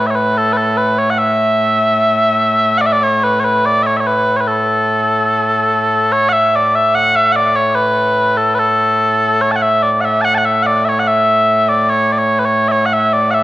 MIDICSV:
0, 0, Header, 1, 2, 480
1, 0, Start_track
1, 0, Key_signature, 3, "major"
1, 0, Tempo, 821918
1, 690, Time_signature, 2, 2, 24, 8
1, 7846, End_track
2, 0, Start_track
2, 0, Title_t, "Bagpipes"
2, 0, Program_c, 0, 109
2, 0, Note_on_c, 0, 45, 89
2, 0, Note_on_c, 0, 57, 89
2, 39, Note_on_c, 0, 76, 61
2, 60, Note_off_c, 0, 76, 0
2, 60, Note_on_c, 0, 73, 61
2, 90, Note_off_c, 0, 73, 0
2, 90, Note_on_c, 0, 71, 79
2, 218, Note_off_c, 0, 71, 0
2, 218, Note_on_c, 0, 69, 101
2, 306, Note_on_c, 0, 71, 88
2, 307, Note_off_c, 0, 69, 0
2, 332, Note_off_c, 0, 71, 0
2, 332, Note_on_c, 0, 69, 88
2, 449, Note_off_c, 0, 69, 0
2, 449, Note_on_c, 0, 71, 88
2, 575, Note_off_c, 0, 71, 0
2, 575, Note_on_c, 0, 73, 78
2, 643, Note_off_c, 0, 73, 0
2, 643, Note_on_c, 0, 78, 73
2, 691, Note_off_c, 0, 78, 0
2, 691, Note_on_c, 0, 76, 105
2, 1624, Note_off_c, 0, 76, 0
2, 1624, Note_on_c, 0, 78, 107
2, 1644, Note_off_c, 0, 78, 0
2, 1644, Note_on_c, 0, 74, 107
2, 1675, Note_off_c, 0, 74, 0
2, 1675, Note_on_c, 0, 76, 96
2, 1710, Note_off_c, 0, 76, 0
2, 1710, Note_on_c, 0, 74, 108
2, 1771, Note_off_c, 0, 74, 0
2, 1771, Note_on_c, 0, 73, 94
2, 1892, Note_off_c, 0, 73, 0
2, 1892, Note_on_c, 0, 71, 91
2, 1988, Note_off_c, 0, 71, 0
2, 1988, Note_on_c, 0, 73, 80
2, 2013, Note_off_c, 0, 73, 0
2, 2013, Note_on_c, 0, 71, 80
2, 2136, Note_off_c, 0, 71, 0
2, 2136, Note_on_c, 0, 74, 110
2, 2238, Note_off_c, 0, 74, 0
2, 2238, Note_on_c, 0, 76, 90
2, 2257, Note_off_c, 0, 76, 0
2, 2257, Note_on_c, 0, 73, 90
2, 2317, Note_on_c, 0, 76, 64
2, 2318, Note_off_c, 0, 73, 0
2, 2338, Note_off_c, 0, 76, 0
2, 2338, Note_on_c, 0, 73, 64
2, 2378, Note_off_c, 0, 73, 0
2, 2378, Note_on_c, 0, 71, 95
2, 2552, Note_off_c, 0, 71, 0
2, 2552, Note_on_c, 0, 73, 63
2, 2575, Note_off_c, 0, 73, 0
2, 2575, Note_on_c, 0, 71, 63
2, 2612, Note_off_c, 0, 71, 0
2, 2612, Note_on_c, 0, 69, 82
2, 3575, Note_off_c, 0, 69, 0
2, 3575, Note_on_c, 0, 73, 109
2, 3672, Note_off_c, 0, 73, 0
2, 3672, Note_on_c, 0, 78, 104
2, 3694, Note_off_c, 0, 78, 0
2, 3694, Note_on_c, 0, 76, 104
2, 3829, Note_off_c, 0, 76, 0
2, 3829, Note_on_c, 0, 74, 92
2, 3944, Note_off_c, 0, 74, 0
2, 3944, Note_on_c, 0, 76, 91
2, 4058, Note_off_c, 0, 76, 0
2, 4058, Note_on_c, 0, 78, 120
2, 4180, Note_off_c, 0, 78, 0
2, 4180, Note_on_c, 0, 76, 105
2, 4275, Note_off_c, 0, 76, 0
2, 4275, Note_on_c, 0, 78, 103
2, 4298, Note_off_c, 0, 78, 0
2, 4299, Note_on_c, 0, 74, 103
2, 4412, Note_off_c, 0, 74, 0
2, 4412, Note_on_c, 0, 73, 92
2, 4529, Note_off_c, 0, 73, 0
2, 4529, Note_on_c, 0, 71, 94
2, 4889, Note_off_c, 0, 71, 0
2, 4889, Note_on_c, 0, 69, 77
2, 4992, Note_off_c, 0, 69, 0
2, 4992, Note_on_c, 0, 71, 101
2, 5017, Note_off_c, 0, 71, 0
2, 5017, Note_on_c, 0, 69, 101
2, 5498, Note_off_c, 0, 69, 0
2, 5498, Note_on_c, 0, 73, 96
2, 5558, Note_off_c, 0, 73, 0
2, 5558, Note_on_c, 0, 81, 70
2, 5584, Note_off_c, 0, 81, 0
2, 5584, Note_on_c, 0, 78, 70
2, 5620, Note_off_c, 0, 78, 0
2, 5620, Note_on_c, 0, 76, 98
2, 5740, Note_off_c, 0, 76, 0
2, 5740, Note_on_c, 0, 74, 90
2, 5845, Note_off_c, 0, 74, 0
2, 5845, Note_on_c, 0, 78, 82
2, 5870, Note_off_c, 0, 78, 0
2, 5870, Note_on_c, 0, 76, 82
2, 5964, Note_off_c, 0, 76, 0
2, 5964, Note_on_c, 0, 81, 118
2, 5983, Note_off_c, 0, 81, 0
2, 5983, Note_on_c, 0, 78, 118
2, 6041, Note_off_c, 0, 78, 0
2, 6041, Note_on_c, 0, 81, 82
2, 6060, Note_off_c, 0, 81, 0
2, 6060, Note_on_c, 0, 78, 82
2, 6105, Note_off_c, 0, 78, 0
2, 6105, Note_on_c, 0, 76, 89
2, 6206, Note_off_c, 0, 76, 0
2, 6206, Note_on_c, 0, 78, 96
2, 6229, Note_off_c, 0, 78, 0
2, 6229, Note_on_c, 0, 74, 96
2, 6337, Note_off_c, 0, 74, 0
2, 6337, Note_on_c, 0, 76, 86
2, 6358, Note_off_c, 0, 76, 0
2, 6359, Note_on_c, 0, 73, 86
2, 6420, Note_off_c, 0, 73, 0
2, 6420, Note_on_c, 0, 78, 77
2, 6469, Note_off_c, 0, 78, 0
2, 6469, Note_on_c, 0, 76, 104
2, 6827, Note_off_c, 0, 76, 0
2, 6827, Note_on_c, 0, 74, 86
2, 6945, Note_off_c, 0, 74, 0
2, 6945, Note_on_c, 0, 73, 105
2, 7078, Note_off_c, 0, 73, 0
2, 7078, Note_on_c, 0, 74, 67
2, 7114, Note_off_c, 0, 74, 0
2, 7114, Note_on_c, 0, 73, 87
2, 7239, Note_off_c, 0, 73, 0
2, 7239, Note_on_c, 0, 71, 68
2, 7274, Note_off_c, 0, 71, 0
2, 7274, Note_on_c, 0, 73, 84
2, 7408, Note_off_c, 0, 73, 0
2, 7408, Note_on_c, 0, 76, 95
2, 7428, Note_off_c, 0, 76, 0
2, 7428, Note_on_c, 0, 73, 95
2, 7510, Note_off_c, 0, 73, 0
2, 7510, Note_on_c, 0, 78, 74
2, 7554, Note_off_c, 0, 78, 0
2, 7554, Note_on_c, 0, 76, 96
2, 7670, Note_off_c, 0, 76, 0
2, 7670, Note_on_c, 0, 74, 81
2, 7773, Note_off_c, 0, 74, 0
2, 7773, Note_on_c, 0, 78, 88
2, 7793, Note_off_c, 0, 78, 0
2, 7793, Note_on_c, 0, 76, 88
2, 7846, Note_off_c, 0, 45, 0
2, 7846, Note_off_c, 0, 57, 0
2, 7846, Note_off_c, 0, 76, 0
2, 7846, End_track
0, 0, End_of_file